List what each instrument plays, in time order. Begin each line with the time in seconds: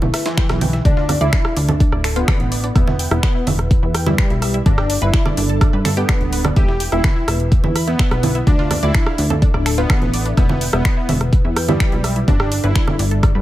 Already playing: analog synth pad E4 B4 E5
0.02 analog synth bass B1, synth arpeggio sound E4 E5, low conga
0.14 synth arpeggio sound E5 E6, cross-stick, snare, closed hi-hat, open hi-hat
0.26 supersaw synth E3, synth bell E4, synth arpeggio sound E4 E5, snare, closed hi-hat
0.37 synth arpeggio sound G5 G6, finger snap, kick, snare, closed hi-hat
0.49 analog synth bass B1, synth arpeggio sound E4 E5, cross-stick, snare, closed hi-hat
0.61 synth arpeggio sound G5 G6, closed hi-hat, open hi-hat, low conga
0.73 synth arpeggio sound E5 E6, snare, closed hi-hat
0.85 analog synth bass D2, synth arpeggio sound D4 D5, supersaw synth D4, analog synth pad D4 A4, synth bell D5, kick, closed hi-hat
0.97 synth arpeggio sound F4 F5, snare
1.09 synth arpeggio sound D4 D5, cross-stick, closed hi-hat, open hi-hat, low conga
1.21 analog synth bass D2, supersaw synth E4, synth arpeggio sound D5 D6, synth bell E5, closed hi-hat
1.33 synth arpeggio sound D4 D5, finger snap, kick, snare, closed hi-hat
1.45 synth arpeggio sound F5 F6, cross-stick
1.57 analog synth bass D2, synth arpeggio sound D4 D5, closed hi-hat, open hi-hat
1.69 synth arpeggio sound A4 A5, closed hi-hat, low conga
1.80 synth arpeggio sound D4 D5, kick, closed hi-hat
1.92 analog synth bass D1, synth arpeggio sound D5 D6, cross-stick
2.04 synth arpeggio sound A4 A5, finger snap, closed hi-hat, open hi-hat
2.16 supersaw synth B3, synth arpeggio sound F4 F5, synth bell B4, closed hi-hat
2.28 synth arpeggio sound D4 D5, finger snap, kick, cross-stick, snare, closed hi-hat, low conga
2.40 analog synth bass A1, closed hi-hat
2.52 synth arpeggio sound D5 D6, closed hi-hat, open hi-hat
2.64 synth arpeggio sound D4 D5, closed hi-hat
2.76 analog synth bass E1, supersaw synth B3, analog synth pad E4 B4, synth bell B4, synth arpeggio sound E5 E6, kick, cross-stick, closed hi-hat
2.88 synth arpeggio sound E4 E5, snare, low conga
2.99 synth arpeggio sound G5 G6, closed hi-hat, open hi-hat
3.11 analog synth bass E1, supersaw synth B3, synth arpeggio sound E4 E5, synth bell B4, cross-stick
3.23 synth arpeggio sound B4 B5, finger snap, kick, snare, closed hi-hat
3.35 synth arpeggio sound E4 E5
3.47 analog synth bass E1, synth arpeggio sound E5 E6, snare, closed hi-hat, open hi-hat, low conga
3.59 cross-stick, closed hi-hat
3.71 kick, closed hi-hat
3.83 analog synth bass E2, synth arpeggio sound E4 E5
3.95 synth arpeggio sound G5 G6, cross-stick, closed hi-hat, open hi-hat
4.06 supersaw synth G3, synth arpeggio sound E4 E5, synth bell G4, snare, closed hi-hat, low conga
4.18 synth arpeggio sound B4 B5, finger snap, kick, snare, closed hi-hat
4.30 analog synth bass B1, synth arpeggio sound E4 E5, closed hi-hat
4.42 synth arpeggio sound E5 E6, cross-stick, closed hi-hat, open hi-hat
4.54 synth arpeggio sound E4 E5, closed hi-hat
4.66 analog synth bass G1, analog synth pad G3 D4 A4, supersaw synth D4, synth arpeggio sound D4 D5, synth bell D5, kick, closed hi-hat, low conga
4.78 synth arpeggio sound G4 G5, cross-stick, snare
4.90 synth arpeggio sound D4 D5, closed hi-hat, open hi-hat
5.02 analog synth bass G1, supersaw synth E4, synth arpeggio sound B4 B5, synth bell E5, closed hi-hat
5.14 synth arpeggio sound D4 D5, finger snap, kick, snare, closed hi-hat
5.26 synth arpeggio sound D5 D6, cross-stick, low conga
5.37 analog synth bass G1, synth arpeggio sound D4 D5, closed hi-hat, open hi-hat
5.49 synth arpeggio sound A4 A5, closed hi-hat
5.61 synth arpeggio sound D4 D5, kick, cross-stick, closed hi-hat
5.73 analog synth bass G2, synth arpeggio sound B4 B5
5.85 synth arpeggio sound A4 A5, finger snap, closed hi-hat, open hi-hat, low conga
5.97 supersaw synth B3, synth arpeggio sound G4 G5, synth bell B4, closed hi-hat
6.09 synth arpeggio sound D4 D5, finger snap, kick, cross-stick, snare, closed hi-hat
6.21 analog synth bass D1, closed hi-hat
6.33 synth arpeggio sound B4 B5, closed hi-hat, open hi-hat
6.45 synth arpeggio sound D4 D5, cross-stick, closed hi-hat, low conga
6.56 analog synth bass E1, analog synth pad E4 B4 E5, supersaw synth G4, synth arpeggio sound E5 E6, synth bell G5, kick, closed hi-hat
6.68 synth arpeggio sound E4 E5, snare
6.80 synth arpeggio sound G5 G6, closed hi-hat, open hi-hat
6.92 analog synth bass E1, supersaw synth E4, synth arpeggio sound E4 E5, synth bell E5, cross-stick, closed hi-hat
7.04 synth arpeggio sound B4 B5, finger snap, kick, snare, closed hi-hat, low conga
7.16 synth arpeggio sound E4 E5
7.28 analog synth bass E1, synth arpeggio sound E5 E6, cross-stick, snare, closed hi-hat, open hi-hat
7.40 closed hi-hat
7.52 kick, closed hi-hat
7.64 analog synth bass E2, synth arpeggio sound E4 E5, low conga
7.76 synth arpeggio sound B5, cross-stick, closed hi-hat, open hi-hat
7.88 supersaw synth B3, synth arpeggio sound E4 E5, synth bell B4, snare, closed hi-hat
7.99 synth arpeggio sound E5 E6, finger snap, kick, snare, closed hi-hat
8.11 analog synth bass B1, synth arpeggio sound B4 B5, cross-stick, closed hi-hat
8.23 synth arpeggio sound E4 E5, closed hi-hat, open hi-hat, low conga
8.35 synth arpeggio sound E4 E5, closed hi-hat
8.47 analog synth bass D2, synth arpeggio sound D4 D5, analog synth pad D4 A4, supersaw synth D4, synth bell D5, kick, closed hi-hat
8.59 synth arpeggio sound F4 F5, snare
8.71 synth arpeggio sound D4 D5, cross-stick, closed hi-hat, open hi-hat, low conga
8.83 analog synth bass D2, supersaw synth E4, synth arpeggio sound D5 D6, synth bell E5, closed hi-hat
8.95 synth arpeggio sound D4 D5, finger snap, kick, snare, closed hi-hat
9.06 synth arpeggio sound F5 F6, cross-stick
9.18 analog synth bass D2, synth arpeggio sound D4 D5, closed hi-hat, open hi-hat
9.30 synth arpeggio sound A4 A5, closed hi-hat, low conga
9.42 synth arpeggio sound D4 D5, kick, closed hi-hat
9.54 analog synth bass D1, synth arpeggio sound D5 D6, cross-stick
9.66 synth arpeggio sound A4 A5, finger snap, closed hi-hat, open hi-hat
9.78 supersaw synth B3, synth arpeggio sound F4 F5, synth bell B4, closed hi-hat
9.90 synth arpeggio sound D4 D5, finger snap, kick, cross-stick, snare, closed hi-hat, low conga
10.02 analog synth bass A1, closed hi-hat
10.14 synth arpeggio sound D5 D6, closed hi-hat, open hi-hat
10.26 synth arpeggio sound D4 D5, closed hi-hat
10.37 analog synth bass E1, supersaw synth B3, analog synth pad E4 B4, synth bell B4, synth arpeggio sound E5 E6, kick, cross-stick, closed hi-hat
10.49 synth arpeggio sound E4 E5, snare, low conga
10.61 synth arpeggio sound G5 G6, closed hi-hat, open hi-hat
10.73 analog synth bass E1, supersaw synth B3, synth arpeggio sound E4 E5, synth bell B4, cross-stick
10.85 synth arpeggio sound B4 B5, finger snap, kick, snare, closed hi-hat
10.97 synth arpeggio sound E4 E5
11.09 analog synth bass E1, synth arpeggio sound E5 E6, snare, closed hi-hat, open hi-hat, low conga
11.21 cross-stick, closed hi-hat
11.33 kick, closed hi-hat
11.45 analog synth bass E2, synth arpeggio sound E4 E5
11.56 synth arpeggio sound G5 G6, cross-stick, closed hi-hat, open hi-hat
11.68 supersaw synth G3, synth arpeggio sound E4 E5, synth bell G4, snare, low conga
11.80 synth arpeggio sound B4 B5, finger snap, kick, snare, closed hi-hat
11.92 analog synth bass B1, synth arpeggio sound E4 E5, closed hi-hat
12.04 synth arpeggio sound E5 E6, cross-stick, closed hi-hat, open hi-hat
12.16 synth arpeggio sound E4 E5, closed hi-hat
12.28 analog synth bass G1, analog synth pad G3 D4 A4, synth arpeggio sound D4 D5, supersaw synth D4, synth bell D5, kick, closed hi-hat, low conga
12.40 synth arpeggio sound G4 G5, cross-stick, snare
12.52 synth arpeggio sound D4 D5, closed hi-hat, open hi-hat
12.64 analog synth bass G1, supersaw synth E4, synth arpeggio sound B4 B5, synth bell E5, closed hi-hat
12.75 synth arpeggio sound D4 D5, finger snap, kick, snare, closed hi-hat
12.88 synth arpeggio sound D5 D6, cross-stick, low conga
12.99 analog synth bass G1, synth arpeggio sound D4 D5, closed hi-hat, open hi-hat
13.11 synth arpeggio sound A4 A5, closed hi-hat
13.23 synth arpeggio sound D4 D5, kick, cross-stick, closed hi-hat
13.35 analog synth bass G2, synth arpeggio sound B4 B5